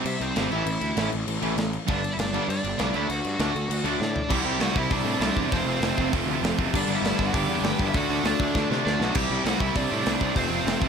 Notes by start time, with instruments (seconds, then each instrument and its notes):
Already playing: distorted electric guitar C3 G3 C4
0.05 picked electric bass C3, lead electric guitar E4 E5, crash
0.20 picked electric bass C2, distorted electric guitar G3 C4, lead electric guitar C4 C5, crash
0.24 distorted electric guitar C3
0.36 picked electric bass G#1, distorted electric guitar C3 G3 C4 E4, snare, crash
0.51 picked electric bass A1, distorted electric guitar A2 E3 A3 C#4 E4, lead electric guitar E4 E5, crash
0.66 picked electric bass A1, crash
0.81 picked electric bass D2, crash
0.96 picked electric bass A1, distorted electric guitar A2 E3 A3 C#4 E4, snare, crash
1.12 picked electric bass A1, crash
1.27 picked electric bass A1, distorted electric guitar A2 E3 A3, crash
1.42 picked electric bass A1, distorted electric guitar A2 E3 A3 C#4 E4, crash
1.56 picked electric bass A1, snare, crash
1.73 crash
1.87 picked electric bass G1, distorted electric guitar G2 D3 G3 B3 D4, lead electric guitar D4, kick, crash
1.91 lead electric guitar D5
2.04 crash
2.13 lead electric guitar E4 E5
2.17 picked electric bass G1, lead electric guitar D4 D5, snare, crash
2.33 distorted electric guitar G2 D3 G3 B3 D4, crash
2.49 picked electric bass G2, lead electric guitar D4 D5, crash
2.63 picked electric bass G1, distorted electric guitar G2 D3 G3, crash
2.78 picked electric bass C2, distorted electric guitar G2 D3 G3 B3 D4, snare, crash
2.93 picked electric bass D2, distorted electric guitar D3 F#3 A3 D4, lead electric guitar E4 E5, crash
3.09 picked electric bass D2, lead electric guitar F#4 F#5, crash
3.24 picked electric bass G2, crash
3.39 picked electric bass D2, distorted electric guitar D3 F#3 A3 D4, snare, crash
3.55 picked electric bass D2, crash
3.68 picked electric bass D2, distorted electric guitar D3 A3, crash
3.72 distorted electric guitar D4
3.84 picked electric bass D2, distorted electric guitar D3 F#3 A3 D4, crash
4.00 picked electric bass A2, lead electric guitar D4 D5, snare
4.16 floor tom
4.30 picked electric bass C2, distorted electric guitar C3 G3 C4 E4, lead electric guitar G4 G5, kick, crash
4.39 lead electric guitar F#5
4.44 picked electric bass C2, distorted electric guitar C3 G3 C4 E4, lead electric guitar G4 G5
4.59 picked electric bass C2, distorted electric guitar C3 G3 C4 E4, lead electric guitar F#4, snare, open hi-hat
4.63 lead electric guitar F#5
4.74 picked electric bass C2, distorted electric guitar C3 G3 C4 E4, lead electric guitar E4, kick
4.78 lead electric guitar E5
4.89 picked electric bass C2, distorted electric guitar C3 G3 C4 E4, lead electric guitar D4 D5, kick, open hi-hat
5.04 picked electric bass A2, distorted electric guitar C3 G3 C4 E4
5.20 picked electric bass C2, distorted electric guitar C3 G3 C4 E4, snare, open hi-hat
5.36 picked electric bass E2, distorted electric guitar C3 G3 C4 E4, kick
5.51 picked electric bass F1, distorted electric guitar F2 C3 F3 A3 C4, lead electric guitar C4 C5, kick, open hi-hat
5.65 picked electric bass F1, distorted electric guitar F2 C3 F3 A3 C4
5.80 picked electric bass F1, distorted electric guitar F2 C3 F3 A3 C4, snare, open hi-hat
5.96 picked electric bass F1, distorted electric guitar F2 C3 F3 A3 C4, kick
6.12 picked electric bass F1, distorted electric guitar F2 C3 F3 A3 C4, kick, open hi-hat
6.26 picked electric bass D2, distorted electric guitar F2 C3 F3 A3 C4
6.42 picked electric bass F1, distorted electric guitar F2 C3 F3 A3 C4, snare, open hi-hat
6.57 picked electric bass F#1, distorted electric guitar F2 C3 F3 A3 C4, kick
6.73 picked electric bass G1, distorted electric guitar G2 D3 G3 B3 D4, lead electric guitar D4 D5, kick, crash
6.87 picked electric bass G1, distorted electric guitar G2 D3 G3 B3 D4
6.95 lead electric guitar E4 E5
7.01 picked electric bass G1, distorted electric guitar G2 D3 G3 B3 D4, lead electric guitar E4, open hi-hat
7.06 lead electric guitar E5, snare
7.18 picked electric bass G1, distorted electric guitar G2 D3 G3 B3 D4, kick
7.26 lead electric guitar F#4 F#5
7.32 picked electric bass G1, distorted electric guitar G2 D3 G3 B3 D4, lead electric guitar G4 G5, kick, open hi-hat
7.47 picked electric bass E2, distorted electric guitar G2 D3 G3 B3 D4
7.62 picked electric bass G1, distorted electric guitar G2 D3 G3 B3 D4, lead electric guitar G4 G5, snare, open hi-hat
7.76 picked electric bass G1, distorted electric guitar G2 D3 G3 B3 D4, kick
7.88 lead electric guitar E4 E5
7.92 picked electric bass D2, distorted electric guitar D3 F#3 A3 D4, kick, open hi-hat
7.97 lead electric guitar F#4 F#5
8.09 picked electric bass D2, distorted electric guitar D3 F#3 A3 D4
8.23 picked electric bass D2, distorted electric guitar D3 F#3 A3 D4, lead electric guitar D4 D5, snare, open hi-hat
8.40 picked electric bass D2, distorted electric guitar D3 F#3 A3 D4, kick
8.54 picked electric bass D2, distorted electric guitar D3 F#3 A3 D4, kick, snare
8.70 picked electric bass C3, distorted electric guitar D3 F#3 A3 D4, snare
8.84 picked electric bass D2, distorted electric guitar D3 F#3 A3 D4, lead electric guitar D4 D5, snare
8.99 picked electric bass B1, distorted electric guitar D3 F#3 A3 D4, lead electric guitar F#5, snare
9.03 lead electric guitar F#4
9.13 picked electric bass C2, distorted electric guitar C3 G3 C4 E4, lead electric guitar G4 G5, kick, crash
9.28 picked electric bass C2, distorted electric guitar C3 G3 C4 E4
9.44 picked electric bass C2, distorted electric guitar C3 G3 C4 E4, lead electric guitar F#4 F#5, snare, open hi-hat
9.59 picked electric bass C2, distorted electric guitar C3 G3 C4 E4, lead electric guitar E4 E5, kick
9.75 picked electric bass C2, distorted electric guitar C3 G3 C4 E4, lead electric guitar D4 D5, kick, open hi-hat
9.90 picked electric bass A2, distorted electric guitar C3 G3 C4 E4
10.05 picked electric bass C2, distorted electric guitar C3 G3 C4 E4, snare, open hi-hat
10.20 picked electric bass C2, distorted electric guitar C3 G3 C4 E4, kick
10.35 picked electric bass F1, distorted electric guitar F2 C3 F3 A3 C4, lead electric guitar C4 C5, kick, open hi-hat
10.49 picked electric bass F1, distorted electric guitar F2 C3 F3 A3 C4
10.65 picked electric bass F1, distorted electric guitar F2 C3 F3 A3 C4, snare, open hi-hat
10.80 picked electric bass F1, distorted electric guitar F2 C3 F3 A3 C4, kick